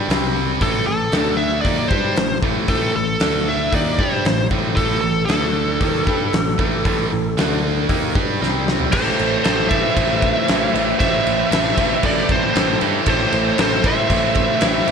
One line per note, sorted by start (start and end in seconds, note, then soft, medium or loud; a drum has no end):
0.09 0.57 C2 medium
0.09 0.60 C3 medium
0.09 0.61 G3 medium
0.09 0.61 C4 loud
0.09 snare loud
0.09 open hi-hat medium
0.61 0.85 A1 medium
0.61 0.86 A2 medium
0.61 0.86 E3 loud
0.61 0.87 A3 loud
0.61 0.86 A4 medium
0.61 kick loud
0.61 open hi-hat soft
0.87 1.11 A1 medium
0.87 1.08 A2 medium
0.87 1.08 E3 medium
0.87 1.35 A4 medium
1.12 1.61 D2 medium
1.12 1.64 D3 medium
1.12 1.64 A3 medium
1.12 1.64 D4 loud
1.12 snare loud
1.12 open hi-hat medium
1.37 1.61 E5 loud
1.61 1.89 D#2 medium
1.61 1.90 D#3 medium
1.61 1.87 D5 loud
1.61 kick loud
1.61 open hi-hat medium
1.65 1.90 A#3 loud
1.65 1.90 D#4 loud
1.88 2.15 G2 medium
1.88 2.16 G3 loud
1.88 2.16 D4 medium
1.88 2.16 G4 medium
1.88 2.37 C5 medium
1.88 kick loud
2.16 2.41 A1 medium
2.16 2.38 A2 medium
2.16 2.38 E3 medium
2.16 snare loud
2.16 open hi-hat medium
2.42 2.67 A1 loud
2.42 2.66 A2 medium
2.42 2.67 E3 medium
2.42 2.68 A3 loud
2.42 kick loud
2.68 2.93 A1 medium
2.68 2.93 A2 medium
2.68 2.94 E3 medium
2.68 2.94 A3 medium
2.68 2.93 A4 medium
2.68 kick medium
2.68 open hi-hat medium
2.94 3.19 A1 medium
2.94 3.15 A2 medium
2.94 3.15 E3 medium
2.94 3.49 A4 medium
3.20 3.69 D2 medium
3.20 3.72 D3 medium
3.20 3.72 A3 loud
3.20 3.73 D4 medium
3.20 snare loud
3.20 open hi-hat medium
3.49 3.74 E5 loud
3.72 3.97 D#2 medium
3.72 3.98 D#3 loud
3.72 3.98 A#3 loud
3.72 3.98 D#4 medium
3.72 4.00 D5 medium
3.72 kick loud
3.72 open hi-hat medium
3.99 4.23 G2 medium
3.99 4.24 G3 medium
3.99 4.24 D4 loud
3.99 4.24 G4 loud
3.99 4.47 C5 medium
3.99 kick loud
4.25 4.49 A1 medium
4.25 4.46 A2 medium
4.25 4.46 E3 medium
4.25 snare loud
4.25 open hi-hat medium
4.51 4.75 A1 medium
4.51 4.75 A2 loud
4.51 4.76 E3 loud
4.51 4.76 A3 loud
4.51 kick loud
4.76 5.01 A1 loud
4.76 5.01 A2 medium
4.76 5.02 E3 medium
4.76 5.02 A3 loud
4.76 5.00 A4 loud
4.76 kick loud
4.76 open hi-hat medium
5.01 5.27 A1 medium
5.01 5.24 A2 medium
5.01 5.24 E3 medium
5.01 5.24 A4 medium
5.26 5.77 D2 medium
5.26 5.80 D3 medium
5.26 8.35 A4 medium
5.26 open hi-hat medium
5.30 5.81 A3 medium
5.30 5.81 D4 loud
5.30 snare loud
5.81 6.05 D#2 medium
5.81 6.06 D#3 loud
5.81 6.06 A#3 loud
5.81 6.07 D#4 loud
5.81 kick loud
5.81 open hi-hat medium
6.07 6.31 G2 medium
6.07 6.32 G3 medium
6.07 6.33 D4 loud
6.07 6.33 G4 loud
6.07 kick loud
6.33 6.57 A1 medium
6.33 6.54 A2 medium
6.33 6.54 E3 medium
6.33 snare loud
6.33 open hi-hat medium
6.59 6.83 A1 loud
6.59 6.84 A2 medium
6.59 6.84 E3 medium
6.59 6.85 A3 loud
6.59 kick loud
6.85 7.09 A1 medium
6.85 7.10 A2 medium
6.85 7.10 E3 medium
6.85 7.11 A3 loud
6.85 kick loud
6.85 open hi-hat soft
7.11 7.36 A1 medium
7.11 7.32 A2 medium
7.11 7.32 E3 medium
7.37 7.85 D2 medium
7.37 7.88 D3 medium
7.37 7.88 A3 medium
7.37 7.89 D4 medium
7.37 snare loud
7.37 open hi-hat medium
7.89 8.13 D#2 medium
7.89 8.14 D#3 medium
7.89 8.14 A#3 medium
7.89 8.14 D#4 loud
7.89 kick loud
7.89 open hi-hat medium
8.15 8.39 G2 medium
8.15 8.40 G3 loud
8.15 8.40 D4 loud
8.15 8.41 G4 loud
8.15 kick loud
8.41 8.89 C2 medium
8.41 8.92 C3 medium
8.41 8.92 G3 medium
8.41 8.93 C4 loud
8.41 snare medium
8.68 snare loud
8.80 floor tom medium
8.92 9.11 A1 medium
8.92 9.44 A2 loud
8.92 9.45 E3 medium
8.92 9.45 A3 loud
8.92 9.45 C4 loud
8.92 9.46 E4 loud
8.92 9.41 A4 medium
8.92 9.43 C5 loud
8.92 kick loud
8.92 crash loud
8.92 crash medium
9.19 9.38 A1 loud
9.19 crash medium
9.44 9.82 A1 medium
9.44 9.70 A2 medium
9.44 9.71 E3 medium
9.44 9.71 A3 loud
9.44 9.71 C4 medium
9.44 9.71 E4 medium
9.44 9.69 A4 medium
9.44 9.68 C5 medium
9.44 snare loud
9.44 crash medium
9.69 9.96 A2 medium
9.69 9.97 E3 medium
9.69 9.97 A3 medium
9.69 9.96 C4 medium
9.69 9.97 E4 loud
9.69 10.97 C5 loud
9.69 10.98 E5 loud
9.69 kick loud
9.69 crash medium
9.96 10.33 A1 medium
9.96 10.48 A2 medium
9.96 10.48 E3 loud
9.96 10.49 A3 loud
9.96 10.48 C4 loud
9.96 10.49 E4 loud
9.96 kick medium
9.96 crash medium
10.22 kick medium
10.22 crash medium
10.48 10.67 A1 medium
10.48 10.75 A2 medium
10.48 10.76 E3 medium
10.48 10.76 A3 loud
10.48 10.74 C4 medium
10.48 10.74 E4 medium
10.48 snare loud
10.48 crash medium
10.74 10.92 A1 loud
10.74 11.01 A2 medium
10.74 11.01 E3 medium
10.74 11.02 A3 medium
10.74 11.00 C4 medium
10.74 11.00 E4 medium
10.74 crash medium
10.99 11.19 A1 medium
10.99 11.52 A2 medium
10.99 11.53 E3 medium
10.99 11.54 A3 loud
10.99 11.52 C4 loud
10.99 11.52 E4 loud
10.99 11.99 C5 medium
10.99 12.05 E5 loud
10.99 kick loud
10.99 crash medium
11.26 11.44 A1 medium
11.26 crash medium
11.51 11.70 A1 medium
11.51 11.78 A2 medium
11.51 11.78 E3 medium
11.51 11.79 A3 medium
11.51 11.78 C4 medium
11.51 11.79 E4 medium
11.51 snare loud
11.51 crash loud
11.78 11.96 A1 medium
11.78 12.04 A2 medium
11.78 12.04 E3 medium
11.78 12.05 A3 loud
11.78 12.03 C4 medium
11.78 12.03 E4 loud
11.78 kick loud
11.78 crash medium
12.03 12.22 A1 loud
12.03 12.56 A2 loud
12.03 12.56 E3 loud
12.03 12.57 A3 loud
12.03 12.55 C4 medium
12.03 12.56 E4 loud
12.03 12.28 A4 medium
12.03 12.31 D5 medium
12.03 kick loud
12.03 crash medium
12.29 12.47 A1 medium
12.29 12.78 A4 medium
12.29 12.79 C5 medium
12.29 kick medium
12.29 crash medium
12.56 12.74 A1 medium
12.56 12.81 A2 medium
12.56 12.82 E3 loud
12.56 12.82 A3 medium
12.56 12.81 C4 medium
12.56 12.82 E4 medium
12.56 snare loud
12.56 crash medium
12.81 13.00 G2 loud
12.81 13.06 A2 medium
12.81 13.07 E3 medium
12.81 13.08 A3 medium
12.81 13.07 C4 loud
12.81 13.07 E4 medium
12.81 crash medium
13.06 13.25 A1 medium
13.06 13.57 A2 loud
13.06 13.59 E3 loud
13.06 13.59 A3 loud
13.06 13.57 C4 loud
13.06 13.58 E4 loud
13.06 13.56 A4 medium
13.06 13.60 C5 loud
13.06 kick loud
13.06 crash medium
13.32 13.51 A1 medium
13.32 crash medium
13.57 13.95 A1 medium
13.57 13.83 A2 medium
13.57 13.84 E3 medium
13.57 13.85 A3 loud
13.57 13.83 C4 medium
13.57 13.84 E4 medium
13.57 snare loud
13.57 crash medium
13.61 13.84 A4 medium
13.61 13.87 C5 loud
13.84 14.08 A2 medium
13.84 14.09 E3 medium
13.84 14.10 A3 medium
13.84 14.09 C4 loud
13.84 14.09 E4 loud
13.84 14.91 C5 loud
13.84 14.91 E5 loud
13.84 kick loud
13.84 crash medium
14.09 14.47 A1 loud
14.09 14.60 A2 loud
14.09 14.61 E3 loud
14.09 14.62 A3 loud
14.09 14.60 C4 loud
14.09 14.60 E4 loud
14.09 kick medium
14.09 crash medium
14.35 kick medium
14.35 crash medium
14.61 14.80 A1 medium
14.61 14.86 A2 medium
14.61 14.87 E3 medium
14.61 14.87 A3 loud
14.61 14.86 C4 medium
14.61 14.87 E4 loud
14.61 snare loud
14.61 crash medium
14.87 14.91 A1 loud
14.87 14.91 A2 medium
14.87 14.91 E3 loud
14.87 14.91 A3 medium
14.87 14.91 A3 loud
14.87 14.91 C4 medium
14.87 14.91 E4 medium
14.87 crash medium